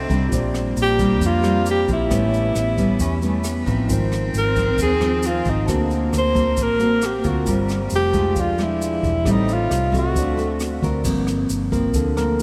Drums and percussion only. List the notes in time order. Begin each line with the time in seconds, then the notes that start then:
0.10 kick, closed hi-hat, shaker
0.32 kick, closed hi-hat, shaker
0.54 cross-stick, closed hi-hat, shaker
0.77 closed hi-hat, shaker
0.99 kick, closed hi-hat, shaker
1.21 kick, closed hi-hat, shaker
1.44 cross-stick, shaker
1.66 closed hi-hat, shaker
1.88 kick, closed hi-hat, shaker
2.11 kick, cross-stick, closed hi-hat, shaker
2.33 closed hi-hat, shaker
2.55 cross-stick, closed hi-hat, shaker
2.78 kick, closed hi-hat, shaker
3.00 kick, closed hi-hat, shaker
3.22 closed hi-hat, shaker
3.44 cross-stick, closed hi-hat, shaker
3.67 kick, closed hi-hat, shaker
3.89 kick, closed hi-hat, shaker
4.12 cross-stick, closed hi-hat, shaker
4.34 closed hi-hat, shaker
4.56 kick, closed hi-hat, shaker
4.78 kick, closed hi-hat, shaker
5.01 cross-stick, closed hi-hat, shaker
5.23 closed hi-hat, shaker
5.45 kick, closed hi-hat, shaker
5.68 kick, cross-stick, closed hi-hat, shaker
5.91 closed hi-hat, shaker
6.13 cross-stick, closed hi-hat, shaker
6.35 kick, closed hi-hat, shaker
6.57 kick, closed hi-hat, shaker
6.80 closed hi-hat, shaker
7.02 cross-stick, closed hi-hat, shaker
7.24 kick, closed hi-hat, shaker
7.46 kick, closed hi-hat, shaker
7.69 cross-stick, closed hi-hat, shaker
7.90 closed hi-hat, shaker
8.13 kick, closed hi-hat, shaker
8.36 kick, closed hi-hat, shaker
8.58 cross-stick, closed hi-hat, shaker
8.81 closed hi-hat, shaker
9.03 kick, closed hi-hat, shaker
9.25 kick, cross-stick, closed hi-hat, shaker
9.48 closed hi-hat, shaker
9.71 cross-stick, shaker
9.93 kick, closed hi-hat, shaker
10.16 kick, closed hi-hat, shaker
10.39 closed hi-hat, shaker
10.60 cross-stick, closed hi-hat, shaker
10.83 kick, closed hi-hat, shaker
11.04 kick, crash, shaker
11.27 cross-stick, closed hi-hat, shaker
11.49 closed hi-hat, shaker
11.72 kick, closed hi-hat, shaker
11.94 kick, closed hi-hat, shaker
12.17 cross-stick, closed hi-hat, shaker
12.39 closed hi-hat